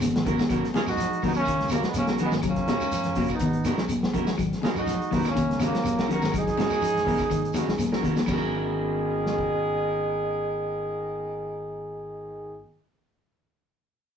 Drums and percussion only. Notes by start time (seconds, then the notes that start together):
0.00 snare, closed hi-hat, high conga, claves, shekere
0.16 snare, closed hi-hat
0.25 kick, closed hi-hat, high conga, low conga, shekere
0.38 snare, closed hi-hat, high conga, low conga, shekere
0.49 kick, closed hi-hat, claves, shekere
0.65 snare, closed hi-hat
0.74 snare, closed hi-hat, high conga, shekere
0.86 snare, claves, shekere
0.97 snare, closed hi-hat, shekere
1.13 closed hi-hat
1.22 kick, open hi-hat, high conga, low conga, shekere
1.34 closed hi-hat, claves, shekere
1.45 kick, closed hi-hat, shekere
1.60 snare, closed hi-hat
1.68 snare, closed hi-hat, high conga, claves, shekere
1.83 snare, closed hi-hat, shekere
1.94 closed hi-hat, high conga, claves, shekere
2.07 snare, closed hi-hat
2.18 snare, closed hi-hat, low conga, shekere
2.31 snare, high conga, shekere
2.42 kick, closed hi-hat, claves, shekere
2.56 kick, snare, closed hi-hat
2.68 snare, closed hi-hat, high conga, shekere
2.80 claves, shekere
2.91 closed hi-hat, shekere
3.03 snare, closed hi-hat
3.15 kick, open hi-hat, high conga, low conga, shekere
3.28 kick, closed hi-hat, claves, shekere
3.39 kick, closed hi-hat, high conga, shekere
3.53 closed hi-hat
3.64 snare, closed hi-hat, high conga, claves, shekere
3.77 snare, shekere
3.88 closed hi-hat, high conga, claves, shekere
4.03 snare
4.13 kick, closed hi-hat, high conga, low conga, shekere
4.27 snare, closed hi-hat, shekere
4.38 kick, closed hi-hat, claves, shekere
4.53 snare, closed hi-hat
4.63 snare, closed hi-hat, high conga, shekere
4.76 claves, shekere
4.86 snare, closed hi-hat, shekere
5.02 closed hi-hat
5.11 kick, snare, open hi-hat, high conga, low conga, shekere
5.25 snare, closed hi-hat, claves, shekere
5.36 kick, closed hi-hat, high conga, shekere
5.51 snare, closed hi-hat
5.60 snare, closed hi-hat, high conga, claves, shekere
5.74 snare, closed hi-hat, shekere
5.84 closed hi-hat, high conga, claves, shekere
5.99 snare, closed hi-hat
6.09 closed hi-hat, high conga, low conga, shekere
6.22 snare, low conga, shekere
6.33 kick, snare, closed hi-hat, claves, shekere
6.47 kick, snare, closed hi-hat
6.57 snare, closed hi-hat, high conga, shekere
6.70 snare, claves, shekere
6.81 closed hi-hat, shekere
6.97 snare, closed hi-hat
7.06 kick, open hi-hat, high conga, low conga, shekere
7.18 kick, closed hi-hat, claves, shekere
7.30 kick, closed hi-hat, shekere
7.45 closed hi-hat
7.53 snare, closed hi-hat, high conga, claves, shekere
7.67 snare, shekere
7.78 snare, closed hi-hat, high conga, claves, shekere
7.93 snare
8.03 kick, snare, closed hi-hat, high conga, low conga, shekere
8.16 snare, closed hi-hat, high conga, shekere
8.26 kick, crash, low conga, claves, shekere
9.26 snare
9.39 kick